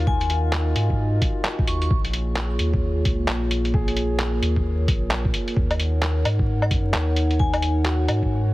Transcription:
Already playing: sub bass D#2, analog synth pad D#4 A#4, upright piano F4 F#4
0.07 analog synth pad D#5, vibraphone G#5, kick
0.21 vibraphone G#5, closed hi-hat
0.30 closed hi-hat
0.53 clap
0.76 sub bass G#2, closed hi-hat
0.90 kick
1.22 kick, closed hi-hat
1.45 clap
1.59 kick
1.67 sub bass D#2, vibraphone C#6, closed hi-hat
1.82 vibraphone C#6, closed hi-hat
1.90 sub bass A#1, analog synth pad A#3 F4 G#4 C#5, kick
2.05 closed hi-hat
2.13 closed hi-hat
2.36 clap
2.59 sub bass D#2, closed hi-hat
2.74 kick
3.05 sub bass C#2, kick, closed hi-hat
3.28 sub bass A#1, clap
3.51 closed hi-hat
3.65 closed hi-hat
3.74 upright piano G#4, analog synth pad A#4, kick
3.88 closed hi-hat
3.97 closed hi-hat
4.19 clap
4.42 sub bass D#2, closed hi-hat
4.56 kick
4.88 sub bass A#1, kick, closed hi-hat
5.11 clap
5.25 kick
5.34 closed hi-hat
5.48 closed hi-hat
5.56 sub bass D#2, analog synth pad D#4 C#5 F#5, kick
5.71 closed hi-hat, low woodblock
5.80 closed hi-hat
6.02 clap
6.25 sub bass G#2, closed hi-hat, low woodblock
6.39 kick
6.62 low woodblock
6.71 sub bass F#2, kick, closed hi-hat
6.94 sub bass D#2, clap
7.16 closed hi-hat
7.31 closed hi-hat
7.39 vibraphone G#5, kick
7.54 vibraphone G#5, closed hi-hat, low woodblock
7.62 closed hi-hat
7.85 upright piano F#4, clap
8.08 sub bass G#2, closed hi-hat, low woodblock
8.23 kick

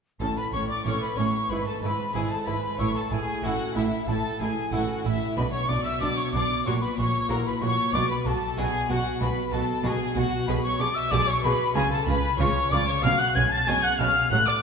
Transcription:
0.20 double bass section A1, harpsichord A2, cello section A2, viola section C#4, violin section A4 A5, flute A5
0.37 violin section B4 B5, flute B5
0.53 double bass section A1, harpsichord A2, cello section A2, viola section C#4, violin section C#5 C#6, flute C#6
0.69 violin section D5 D6, flute D6
0.85 double bass section A1, cello section A2, harpsichord A2 E4 C#5, viola section C#4, violin section C#5 C#6, flute C#6
1.01 violin section B4 B5, flute B5
1.17 double bass section A1, harpsichord A2, cello section A2, viola section C#4, violin section C#5 C#6, flute C#6
1.50 double bass section G#1, cello section G#2, harpsichord G#2, viola section E4, violin section B4 B5, flute B5
1.66 violin section A4 A5, flute A5
1.82 double bass section G#1, cello section G#2, harpsichord G#2, viola section E4, violin section B4 B5, flute B5
2.14 double bass section G#1, harpsichord G#2 E4 B4, cello section G#2, viola section E4, violin section G#4 G#5, flute G#5
2.31 violin section A4 A5, flute A5
2.46 double bass section G#1, harpsichord G#2, cello section G#2, viola section E4, violin section B4 B5, flute B5
2.79 double bass section A1, harpsichord A2, cello section A2, viola section E4, violin section C#5 C#6, flute C#6
2.95 violin section A4 A5, flute A5
3.11 double bass section A1, harpsichord A2, cello section A2, viola section E4, violin section G#4 G#5, flute G#5
3.43 double bass section A1, cello section A2, harpsichord A2 C#4 E4 A4, viola section E4, violin section F#4 F#5, flute F#5
3.75 double bass section A1, cello section A2, harpsichord A2, violin section E4 E5, viola section E4, flute E5
4.08 double bass section A1, harpsichord A2, cello section A2, viola section E4, violin section A4 A5, flute A5
4.40 double bass section A1, harpsichord A2, cello section A2, viola section E4, violin section G#4 G#5, flute G#5
4.72 double bass section A1, harpsichord A2 C#4 E4 A4, cello section A2, viola section E4, violin section F#4 F#5, flute F#5
5.04 double bass section A1, harpsichord A2, cello section A2, violin section E4 E5, viola section E4, flute E5
5.36 double bass section B1, harpsichord B2, cello section B2, viola section D4, violin section B4 B5, flute B5
5.52 violin section C#5 C#6, flute C#6
5.68 double bass section B1, cello section B2, harpsichord B2, viola section D4, violin section D5 D6, flute D6
5.84 violin section E5 E6, flute E6
6.00 double bass section B1, harpsichord B2 D4 F#4, cello section B2, viola section D4, violin section D5 D6, flute D6
6.17 violin section C#5 C#6, flute C#6
6.33 double bass section B1, harpsichord B2, cello section B2, viola section D4, violin section D5 D6, flute D6
6.66 double bass section A#1, harpsichord A#2, cello section A#2, viola section F#4, violin section C#5 C#6, flute C#6
6.82 violin section B4 B5, flute B5
6.98 double bass section A#1, harpsichord A#2, cello section A#2, viola section F#4, violin section C#5 C#6, flute C#6
7.29 double bass section A#1, harpsichord A#2 E4 F#4, cello section A#2, viola section F#4, violin section A#4 A#5, flute A#5
7.46 violin section B4 B5, flute B5
7.61 double bass section A#1, harpsichord A#2, cello section A#2, viola section F#4, violin section C#5 C#6, flute C#6
7.93 double bass section B1, harpsichord B2, cello section B2, viola section F#4, violin section D5 D6, flute D6
8.09 violin section B4 B5, flute B5
8.25 double bass section B1, harpsichord B2, cello section B2, viola section F#4, violin section A4 A5, flute A5
8.57 double bass section B1, harpsichord B2 B3 D4 F#4, cello section B2, viola section F#4, violin section G#4 G#5, flute G#5
8.89 double bass section B1, cello section B2, harpsichord B2, viola section F#4, violin section F#4 F#5, flute F#5
9.20 double bass section B1, cello section B2, harpsichord B2, viola section F#4, violin section B4 B5, flute B5
9.52 double bass section B1, cello section B2, harpsichord B2, viola section F#4, violin section A4 A5, flute A5
9.84 double bass section B1, cello section B2, harpsichord B2 B3 D4 F#4, viola section F#4, violin section G#4 G#5, flute G#5
10.16 double bass section B1, cello section B2, harpsichord B2, viola section F#4, violin section F#4 F#5, flute F#5
10.47 double bass section B1, cello section B2, harpsichord B2, viola section G#4, violin section B4 B5, flute B5
10.64 violin section C#5 C#6, flute C#6
10.79 double bass section B1, harpsichord B2, cello section B2, viola section G#4, violin section D5 D6, flute D6
10.95 violin section E5 E6, flute E6
11.11 double bass section B1, harpsichord B2 D4 G#4, cello section B2, viola section G#4, violin section D5 D6, flute D6
11.27 violin section C#5 C#6, flute C#6
11.42 double bass section B1, harpsichord B2, cello section B2, viola section G#4, violin section B4 B5, flute B5
11.75 double bass section C#2, harpsichord C#3, cello section C#3, viola section F4, violin section G#4 G#5, flute G#5
11.91 violin section A4 A5, flute A5
12.07 double bass section C#2, harpsichord C#3, cello section C#3, viola section F4, violin section B4 B5, flute B5
12.39 double bass section C#2, harpsichord C#3 C#4 F4, cello section C#3, viola section F4, violin section C#5 C#6, flute C#6
12.70 double bass section C#2, harpsichord C#3, cello section C#3, viola section F4, violin section D5 D6, flute D6
12.86 violin section C#5 C#6, flute C#6
13.02 double bass section B1, harpsichord B2, cello section B2, viola section C#4, violin section F5 F6, flute F6
13.18 violin section F#5 F#6, flute F#6
13.35 double bass section B1, harpsichord B2, cello section B2, viola section C#4, violin section G#5 G#6, flute G#6
13.51 violin section A5 A6, flute A6
13.66 double bass section B1, harpsichord B2 C#4 G#4, cello section B2, viola section C#4, violin section G#5 G#6, flute G#6
13.83 violin section F#5 F#6, flute F#6
13.99 double bass section B1, harpsichord B2, cello section B2, viola section C#4, violin section F5 F6, flute F6
14.30 double bass section A1, harpsichord A2, cello section A2, viola section F#3, violin section F#5 F#6, flute F#6
14.47 violin section D5 D6, flute D6

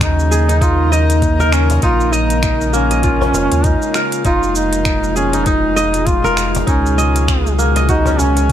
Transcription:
Already playing: sub bass D#2, analog synth pad C#3 F#3 A#3 C#4 G#4, kora C#4 D#4 A#4
0.01 duduk D#4, finger snap, kick, closed hi-hat, shaker
0.19 analog synth pad D#4, shaker
0.31 kora G#4, shaker
0.37 analog synth pad A#4
0.49 kora D#4, closed hi-hat, shaker
0.61 kora D#4, duduk F4, kick, closed hi-hat, shaker
0.92 duduk D#4, kora D#5, shaker
1.10 closed hi-hat, shaker
1.22 kick, closed hi-hat, shaker
1.39 kora A#4, cajon bass, shaker
1.52 duduk C#4, finger snap, cajon slap, shaker
1.70 cajon bass, closed hi-hat, shaker
1.82 sub bass A#1, kora D#4, duduk F4, kick, closed hi-hat, shaker
2.01 shaker
2.09 analog synth pad G#3, kora D#5
2.13 duduk D#4, shaker
2.30 closed hi-hat, shaker
2.43 finger snap, kick, closed hi-hat, shaker
2.53 analog synth pad F4
2.61 shaker
2.73 kora A#3, duduk C#4, shaker
2.91 kora D#5, closed hi-hat, shaker
3.03 kora F4, kick, closed hi-hat, shaker
3.21 kora C#4, cajon bass
3.34 sub bass F1, cajon bass, cajon slap, shaker
3.52 sub bass D#2, cajon slap, closed hi-hat, shaker
3.64 duduk D#4, kick, closed hi-hat, shaker
3.82 shaker
3.94 kora A#4, finger snap, shaker
4.12 closed hi-hat, shaker
4.25 sub bass F1, analog synth pad B2, kora D#4, duduk F4, kick, closed hi-hat, shaker
4.42 analog synth pad F3, shaker
4.56 duduk D#4, shaker
4.73 closed hi-hat, shaker
4.85 finger snap, kick, closed hi-hat, shaker
5.04 shaker
5.11 analog synth pad G#4
5.16 duduk C#4, kora G#4, shaker
5.33 kora D#4, closed hi-hat, shaker
5.46 duduk D#4, kora D#4, kick, closed hi-hat, shaker
5.76 kora D#5, shaker
5.94 closed hi-hat, shaker
6.06 duduk F4, kick, closed hi-hat, shaker
6.24 kora A#4, cajon bass, shaker
6.37 finger snap, cajon slap, shaker
6.55 cajon bass, closed hi-hat, shaker
6.67 sub bass C#2, duduk C#4, kora D#4, kick, closed hi-hat, shaker
6.86 shaker
6.95 analog synth pad F#3, kora D#5
6.99 shaker
7.15 cajon slap, closed hi-hat, shaker
7.28 finger snap, kick, closed hi-hat, shaker
7.47 shaker
7.51 analog synth pad C#4
7.59 kora A#3, shaker
7.76 kora D#5, cajon slap, closed hi-hat, shaker
7.89 duduk D#4, kora F#4, kick, closed hi-hat, shaker
8.06 kora C#4, cajon bass, shaker
8.19 duduk C#4, cajon bass, cajon slap, shaker
8.36 cajon slap, closed hi-hat, shaker

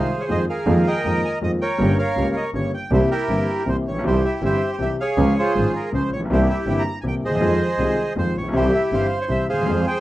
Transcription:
Already playing: bandoneon G#4 C5 F5
0.21 bandoneon C#5
0.28 grand piano F2 D#3 F3 G#3 C4 F4, double bass F2, bandoneon D#5
0.50 bandoneon G#4 A#4 F5
0.66 double bass F2, grand piano F2 D#3 F3 G#3 A#3 F4
0.87 bandoneon A#4 D#5 G5
1.05 double bass F2, grand piano F2 D#3 F3 G#3 A#3 F4
1.25 bandoneon G#5
1.41 grand piano F2 D#3 F3 G#3 A#3 F4, double bass F2, bandoneon D#5
1.61 bandoneon A#4 C#5 G5
1.78 grand piano G1 G2 C#3 G3 A#3 G4, double bass G1
1.98 bandoneon A#4 C#5 F5
2.16 grand piano C#2 C#3 G3 A#3 G4, double bass C#2
2.32 bandoneon F5
2.36 bandoneon D#5
2.53 grand piano G1 G2 C#3 G3 A#3 G4, double bass G1, bandoneon C#5
2.74 bandoneon G5
2.91 grand piano C2 C3 E3 A#3 C4 G4, double bass C2, bandoneon E4 G4 C5
3.11 bandoneon E4 G4 A#4
3.28 grand piano G1 G2 E3 A#3 C4 G4, double bass G1
3.65 grand piano C2 C3 E3 A#3 C4 G4, double bass C2, bandoneon C5
3.86 grand piano A1, double bass A#1, bandoneon C#5
3.94 grand piano A#1
3.99 grand piano B1
4.03 grand piano C2 C3 E3 G3 C4 G4, double bass C2, bandoneon E4 C5
4.07 bandoneon G4
4.25 bandoneon E5
4.41 grand piano G1 G2 E3 G3 C4 G4, double bass G1
4.45 bandoneon G4 C5 E5
4.72 bandoneon C5
4.78 grand piano C2 C3 E3 G3 C4 G4, double bass C2, bandoneon E5
5.00 bandoneon G#4 C#5 F5
5.17 grand piano C#2 C#3 F3 G#3 C#4 G#4, double bass C#2
5.38 bandoneon F4 G#4 C5
5.55 grand piano G#1 G#2 F3 G#3 C#4 G#4, double bass G#1
5.75 bandoneon A#4
5.92 grand piano C#2 C#3 F3 G#3 C#4 G#4, double bass C#2, bandoneon C5
6.11 double bass A#1, bandoneon C#5
6.16 grand piano A1 A#1
6.25 grand piano B1
6.30 double bass C2, grand piano C2 C3 E3 A#3 C4 G4, bandoneon E4 G4 C5
6.50 bandoneon E5
6.66 grand piano G1 G2 E3 A#3 C4 G4, double bass G1, bandoneon G5
6.79 bandoneon A#5
7.01 grand piano C2 C3 E3 A#3 C4 G4, double bass C2, bandoneon G#5
7.07 bandoneon G5
7.23 grand piano D2, double bass D#2, bandoneon G#4 C5 D#5
7.31 grand piano D#2
7.35 grand piano E2
7.41 double bass F2, grand piano F2 D#3 F3 G#3 C4 F4
7.78 double bass C2, grand piano C2 C3 D#3 G#3 C4 F4
8.15 double bass F2, grand piano F2 D#3 F3 G#3 C4 F4, bandoneon C5
8.36 grand piano A1, double bass A#1, bandoneon C#5
8.43 grand piano A#1
8.48 grand piano B1
8.52 grand piano C2 C3 E3 G3 C4 G4, double bass C2, bandoneon E4 G4 C5
8.75 bandoneon E5
8.92 grand piano G1 G2 E3 G3 C4 G4, double bass G1, bandoneon C5 F5
9.21 bandoneon C#5
9.28 grand piano C2 C3 E3 G3 C4 G4, double bass C2, bandoneon E5
9.48 grand piano D2, double bass D#2, bandoneon G#4 C5 F5
9.58 grand piano D#2 E2
9.66 double bass F2, grand piano F2 F3 G#3 C4 G#4
9.87 bandoneon C5 G5

